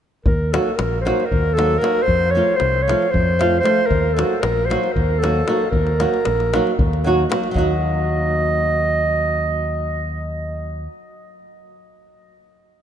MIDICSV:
0, 0, Header, 1, 5, 480
1, 0, Start_track
1, 0, Tempo, 522193
1, 224, Time_signature, 7, 3, 24, 8
1, 11784, End_track
2, 0, Start_track
2, 0, Title_t, "Clarinet"
2, 0, Program_c, 0, 71
2, 231, Note_on_c, 0, 70, 74
2, 478, Note_on_c, 0, 69, 67
2, 491, Note_off_c, 0, 70, 0
2, 699, Note_on_c, 0, 70, 75
2, 713, Note_off_c, 0, 69, 0
2, 925, Note_off_c, 0, 70, 0
2, 930, Note_on_c, 0, 72, 71
2, 1157, Note_on_c, 0, 70, 83
2, 1171, Note_off_c, 0, 72, 0
2, 1410, Note_on_c, 0, 69, 92
2, 1424, Note_off_c, 0, 70, 0
2, 1639, Note_on_c, 0, 70, 86
2, 1653, Note_off_c, 0, 69, 0
2, 1864, Note_on_c, 0, 72, 101
2, 1878, Note_off_c, 0, 70, 0
2, 2118, Note_on_c, 0, 73, 88
2, 2131, Note_off_c, 0, 72, 0
2, 2349, Note_on_c, 0, 72, 86
2, 2363, Note_off_c, 0, 73, 0
2, 2593, Note_on_c, 0, 73, 82
2, 2607, Note_off_c, 0, 72, 0
2, 2853, Note_on_c, 0, 72, 98
2, 2866, Note_off_c, 0, 73, 0
2, 3303, Note_off_c, 0, 72, 0
2, 3308, Note_on_c, 0, 72, 100
2, 3553, Note_on_c, 0, 70, 86
2, 3567, Note_off_c, 0, 72, 0
2, 3800, Note_on_c, 0, 69, 74
2, 3814, Note_off_c, 0, 70, 0
2, 3883, Note_on_c, 0, 70, 63
2, 3896, Note_off_c, 0, 69, 0
2, 3910, Note_on_c, 0, 69, 75
2, 3924, Note_off_c, 0, 70, 0
2, 4041, Note_on_c, 0, 70, 87
2, 4054, Note_off_c, 0, 69, 0
2, 4283, Note_on_c, 0, 72, 73
2, 4297, Note_off_c, 0, 70, 0
2, 4529, Note_on_c, 0, 70, 79
2, 4543, Note_off_c, 0, 72, 0
2, 4771, Note_on_c, 0, 69, 99
2, 4784, Note_off_c, 0, 70, 0
2, 5244, Note_off_c, 0, 69, 0
2, 5249, Note_on_c, 0, 70, 84
2, 6445, Note_off_c, 0, 70, 0
2, 6951, Note_on_c, 0, 75, 85
2, 9996, Note_off_c, 0, 75, 0
2, 11784, End_track
3, 0, Start_track
3, 0, Title_t, "Nylon-string guitar"
3, 0, Program_c, 1, 24
3, 490, Note_on_c, 1, 54, 56
3, 497, Note_on_c, 1, 58, 56
3, 502, Note_on_c, 1, 63, 46
3, 504, Note_on_c, 1, 66, 64
3, 638, Note_off_c, 1, 54, 0
3, 642, Note_off_c, 1, 58, 0
3, 644, Note_off_c, 1, 63, 0
3, 645, Note_off_c, 1, 66, 0
3, 967, Note_on_c, 1, 54, 61
3, 974, Note_on_c, 1, 58, 47
3, 974, Note_on_c, 1, 63, 55
3, 985, Note_on_c, 1, 66, 64
3, 1121, Note_off_c, 1, 54, 0
3, 1123, Note_off_c, 1, 58, 0
3, 1124, Note_off_c, 1, 63, 0
3, 1129, Note_off_c, 1, 66, 0
3, 1443, Note_on_c, 1, 54, 53
3, 1447, Note_on_c, 1, 58, 55
3, 1452, Note_on_c, 1, 63, 47
3, 1458, Note_on_c, 1, 66, 57
3, 1594, Note_off_c, 1, 54, 0
3, 1596, Note_off_c, 1, 58, 0
3, 1598, Note_off_c, 1, 63, 0
3, 1601, Note_off_c, 1, 66, 0
3, 1667, Note_on_c, 1, 54, 59
3, 1674, Note_on_c, 1, 58, 57
3, 1686, Note_on_c, 1, 63, 43
3, 1688, Note_on_c, 1, 66, 54
3, 1820, Note_off_c, 1, 54, 0
3, 1823, Note_off_c, 1, 58, 0
3, 1829, Note_off_c, 1, 63, 0
3, 1829, Note_off_c, 1, 66, 0
3, 2159, Note_on_c, 1, 53, 55
3, 2164, Note_on_c, 1, 57, 57
3, 2170, Note_on_c, 1, 60, 56
3, 2178, Note_on_c, 1, 65, 66
3, 2310, Note_off_c, 1, 53, 0
3, 2313, Note_off_c, 1, 57, 0
3, 2316, Note_off_c, 1, 60, 0
3, 2320, Note_off_c, 1, 65, 0
3, 2644, Note_on_c, 1, 53, 62
3, 2649, Note_on_c, 1, 57, 56
3, 2662, Note_on_c, 1, 60, 50
3, 2668, Note_on_c, 1, 65, 62
3, 2797, Note_off_c, 1, 53, 0
3, 2799, Note_off_c, 1, 57, 0
3, 2806, Note_off_c, 1, 60, 0
3, 2809, Note_off_c, 1, 65, 0
3, 3117, Note_on_c, 1, 53, 60
3, 3122, Note_on_c, 1, 57, 55
3, 3130, Note_on_c, 1, 60, 55
3, 3137, Note_on_c, 1, 65, 70
3, 3270, Note_off_c, 1, 53, 0
3, 3272, Note_off_c, 1, 57, 0
3, 3276, Note_off_c, 1, 60, 0
3, 3280, Note_off_c, 1, 65, 0
3, 3339, Note_on_c, 1, 53, 59
3, 3346, Note_on_c, 1, 57, 52
3, 3351, Note_on_c, 1, 60, 50
3, 3358, Note_on_c, 1, 65, 56
3, 3495, Note_off_c, 1, 53, 0
3, 3498, Note_off_c, 1, 57, 0
3, 3501, Note_off_c, 1, 60, 0
3, 3505, Note_off_c, 1, 65, 0
3, 3828, Note_on_c, 1, 54, 62
3, 3832, Note_on_c, 1, 58, 44
3, 3838, Note_on_c, 1, 63, 49
3, 3848, Note_on_c, 1, 66, 52
3, 3985, Note_off_c, 1, 54, 0
3, 3987, Note_off_c, 1, 58, 0
3, 3990, Note_off_c, 1, 63, 0
3, 3995, Note_off_c, 1, 66, 0
3, 4320, Note_on_c, 1, 54, 63
3, 4323, Note_on_c, 1, 58, 54
3, 4330, Note_on_c, 1, 63, 49
3, 4331, Note_on_c, 1, 66, 69
3, 4476, Note_off_c, 1, 54, 0
3, 4477, Note_off_c, 1, 58, 0
3, 4481, Note_off_c, 1, 63, 0
3, 4481, Note_off_c, 1, 66, 0
3, 4801, Note_on_c, 1, 54, 60
3, 4807, Note_on_c, 1, 58, 53
3, 4811, Note_on_c, 1, 63, 54
3, 4818, Note_on_c, 1, 66, 69
3, 4954, Note_off_c, 1, 54, 0
3, 4955, Note_off_c, 1, 58, 0
3, 4958, Note_off_c, 1, 63, 0
3, 4962, Note_off_c, 1, 66, 0
3, 5029, Note_on_c, 1, 54, 49
3, 5035, Note_on_c, 1, 58, 49
3, 5041, Note_on_c, 1, 63, 46
3, 5048, Note_on_c, 1, 66, 56
3, 5182, Note_off_c, 1, 54, 0
3, 5183, Note_off_c, 1, 58, 0
3, 5187, Note_off_c, 1, 63, 0
3, 5191, Note_off_c, 1, 66, 0
3, 5512, Note_on_c, 1, 58, 56
3, 5513, Note_on_c, 1, 54, 51
3, 5524, Note_on_c, 1, 63, 53
3, 5528, Note_on_c, 1, 66, 69
3, 5669, Note_off_c, 1, 54, 0
3, 5669, Note_off_c, 1, 58, 0
3, 5675, Note_off_c, 1, 63, 0
3, 5677, Note_off_c, 1, 66, 0
3, 6003, Note_on_c, 1, 54, 74
3, 6009, Note_on_c, 1, 58, 59
3, 6016, Note_on_c, 1, 63, 63
3, 6024, Note_on_c, 1, 66, 78
3, 6160, Note_off_c, 1, 54, 0
3, 6163, Note_off_c, 1, 58, 0
3, 6166, Note_off_c, 1, 63, 0
3, 6170, Note_off_c, 1, 66, 0
3, 6474, Note_on_c, 1, 54, 72
3, 6486, Note_on_c, 1, 58, 55
3, 6492, Note_on_c, 1, 63, 68
3, 6499, Note_on_c, 1, 66, 76
3, 6632, Note_off_c, 1, 54, 0
3, 6638, Note_off_c, 1, 58, 0
3, 6641, Note_off_c, 1, 63, 0
3, 6645, Note_off_c, 1, 66, 0
3, 6706, Note_on_c, 1, 54, 59
3, 6711, Note_on_c, 1, 58, 62
3, 6715, Note_on_c, 1, 63, 58
3, 6725, Note_on_c, 1, 66, 64
3, 6862, Note_off_c, 1, 54, 0
3, 6865, Note_off_c, 1, 58, 0
3, 6866, Note_off_c, 1, 63, 0
3, 6872, Note_off_c, 1, 66, 0
3, 6906, Note_on_c, 1, 54, 71
3, 6933, Note_on_c, 1, 58, 65
3, 6950, Note_on_c, 1, 63, 63
3, 6970, Note_on_c, 1, 66, 84
3, 9950, Note_off_c, 1, 54, 0
3, 9977, Note_off_c, 1, 58, 0
3, 9995, Note_off_c, 1, 63, 0
3, 10014, Note_off_c, 1, 66, 0
3, 11784, End_track
4, 0, Start_track
4, 0, Title_t, "Fingered electric bass"
4, 0, Program_c, 2, 33
4, 235, Note_on_c, 2, 39, 83
4, 524, Note_off_c, 2, 39, 0
4, 728, Note_on_c, 2, 34, 78
4, 1015, Note_off_c, 2, 34, 0
4, 1214, Note_on_c, 2, 39, 74
4, 1629, Note_off_c, 2, 39, 0
4, 1913, Note_on_c, 2, 41, 77
4, 2201, Note_off_c, 2, 41, 0
4, 2403, Note_on_c, 2, 36, 77
4, 2691, Note_off_c, 2, 36, 0
4, 2886, Note_on_c, 2, 41, 79
4, 3303, Note_off_c, 2, 41, 0
4, 3590, Note_on_c, 2, 39, 89
4, 3879, Note_off_c, 2, 39, 0
4, 4075, Note_on_c, 2, 34, 72
4, 4366, Note_off_c, 2, 34, 0
4, 4563, Note_on_c, 2, 39, 87
4, 4983, Note_off_c, 2, 39, 0
4, 5266, Note_on_c, 2, 39, 78
4, 5558, Note_off_c, 2, 39, 0
4, 5761, Note_on_c, 2, 34, 81
4, 6052, Note_off_c, 2, 34, 0
4, 6241, Note_on_c, 2, 39, 90
4, 6663, Note_off_c, 2, 39, 0
4, 6943, Note_on_c, 2, 39, 76
4, 9987, Note_off_c, 2, 39, 0
4, 11784, End_track
5, 0, Start_track
5, 0, Title_t, "Davul"
5, 236, Note_on_c, 9, 43, 89
5, 328, Note_off_c, 9, 43, 0
5, 495, Note_on_c, 9, 37, 72
5, 587, Note_off_c, 9, 37, 0
5, 724, Note_on_c, 9, 37, 64
5, 816, Note_off_c, 9, 37, 0
5, 981, Note_on_c, 9, 37, 57
5, 1073, Note_off_c, 9, 37, 0
5, 1102, Note_on_c, 9, 37, 19
5, 1194, Note_off_c, 9, 37, 0
5, 1209, Note_on_c, 9, 43, 68
5, 1301, Note_off_c, 9, 43, 0
5, 1458, Note_on_c, 9, 37, 63
5, 1550, Note_off_c, 9, 37, 0
5, 1690, Note_on_c, 9, 37, 54
5, 1782, Note_off_c, 9, 37, 0
5, 1908, Note_on_c, 9, 43, 57
5, 2000, Note_off_c, 9, 43, 0
5, 2388, Note_on_c, 9, 37, 51
5, 2480, Note_off_c, 9, 37, 0
5, 2661, Note_on_c, 9, 37, 54
5, 2752, Note_off_c, 9, 37, 0
5, 2779, Note_on_c, 9, 37, 18
5, 2871, Note_off_c, 9, 37, 0
5, 2896, Note_on_c, 9, 43, 69
5, 2988, Note_off_c, 9, 43, 0
5, 3132, Note_on_c, 9, 37, 59
5, 3224, Note_off_c, 9, 37, 0
5, 3359, Note_on_c, 9, 37, 55
5, 3451, Note_off_c, 9, 37, 0
5, 3592, Note_on_c, 9, 43, 64
5, 3684, Note_off_c, 9, 43, 0
5, 3849, Note_on_c, 9, 37, 63
5, 3941, Note_off_c, 9, 37, 0
5, 4072, Note_on_c, 9, 37, 64
5, 4164, Note_off_c, 9, 37, 0
5, 4331, Note_on_c, 9, 37, 54
5, 4423, Note_off_c, 9, 37, 0
5, 4445, Note_on_c, 9, 37, 20
5, 4537, Note_off_c, 9, 37, 0
5, 4557, Note_on_c, 9, 43, 60
5, 4649, Note_off_c, 9, 43, 0
5, 4813, Note_on_c, 9, 37, 61
5, 4905, Note_off_c, 9, 37, 0
5, 5033, Note_on_c, 9, 37, 55
5, 5125, Note_off_c, 9, 37, 0
5, 5259, Note_on_c, 9, 43, 71
5, 5351, Note_off_c, 9, 43, 0
5, 5392, Note_on_c, 9, 37, 25
5, 5484, Note_off_c, 9, 37, 0
5, 5515, Note_on_c, 9, 37, 58
5, 5607, Note_off_c, 9, 37, 0
5, 5641, Note_on_c, 9, 37, 23
5, 5733, Note_off_c, 9, 37, 0
5, 5748, Note_on_c, 9, 37, 58
5, 5840, Note_off_c, 9, 37, 0
5, 5884, Note_on_c, 9, 37, 26
5, 5976, Note_off_c, 9, 37, 0
5, 6008, Note_on_c, 9, 37, 61
5, 6100, Note_off_c, 9, 37, 0
5, 6131, Note_on_c, 9, 37, 21
5, 6223, Note_off_c, 9, 37, 0
5, 6239, Note_on_c, 9, 43, 79
5, 6331, Note_off_c, 9, 43, 0
5, 6374, Note_on_c, 9, 37, 23
5, 6466, Note_off_c, 9, 37, 0
5, 6726, Note_on_c, 9, 37, 74
5, 6817, Note_off_c, 9, 37, 0
5, 6835, Note_on_c, 9, 37, 24
5, 6927, Note_off_c, 9, 37, 0
5, 6945, Note_on_c, 9, 43, 66
5, 7037, Note_off_c, 9, 43, 0
5, 11784, End_track
0, 0, End_of_file